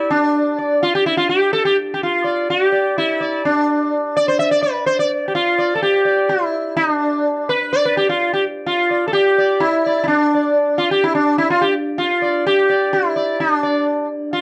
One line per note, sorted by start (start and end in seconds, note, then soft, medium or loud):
0.00 0.11 E4 medium
0.10 0.83 D4 medium
0.58 0.80 D5 soft
0.82 0.93 F4 medium
0.95 1.05 G4 medium
1.06 1.16 E4 medium
1.17 1.29 F4 medium
1.29 1.52 G4 medium
1.53 1.65 A4 medium
1.65 1.76 G4 medium
1.94 2.00 G4 medium
2.03 2.50 F4 medium
2.24 2.46 D5 soft
2.50 2.97 G4 medium
2.72 2.94 D5 soft
2.98 3.41 E4 medium
3.20 3.42 D5 soft
3.45 4.18 D4 medium
4.16 4.28 D5 medium
4.28 4.39 C5 medium
4.39 4.50 E5 medium
4.51 4.62 D5 medium
4.63 4.86 B4 medium
4.86 4.99 C5 medium
4.99 5.10 D5 medium
5.28 5.34 G4 medium
5.35 5.75 F4 medium
5.58 5.80 D5 soft
5.75 5.82 A4 medium
5.82 6.31 G4 medium
6.05 6.27 D5 soft
6.29 6.76 E4 medium
6.77 6.92 D#4 medium
6.92 7.50 D4 medium
7.49 7.73 B4 loud
7.73 7.84 D5 medium
7.85 7.97 B4 medium
7.97 8.07 G4 medium
8.09 8.33 F4 medium
8.33 8.43 G4 medium
8.66 9.04 F4 medium
8.91 9.13 D5 soft
9.08 9.13 A4 medium
9.13 9.62 G4 medium
9.38 9.60 D5 soft
9.60 10.02 E4 medium
9.86 10.08 D5 soft
10.04 10.07 E4 medium
10.08 10.81 D4 medium
10.35 10.56 D5 soft
10.78 10.91 F4 medium
10.91 11.04 G4 medium
11.04 11.14 E4 medium
11.15 11.38 D4 medium
11.38 11.50 E4 medium
11.50 11.63 F4 medium
11.61 11.73 G4 medium
11.98 12.46 F4 medium
12.22 12.44 D5 soft
12.47 12.95 G4 medium
12.70 12.91 D5 soft
12.93 13.40 E4 medium
13.16 13.38 D5 soft
13.40 14.07 D4 medium
13.63 13.85 D5 soft
14.33 14.41 F4 medium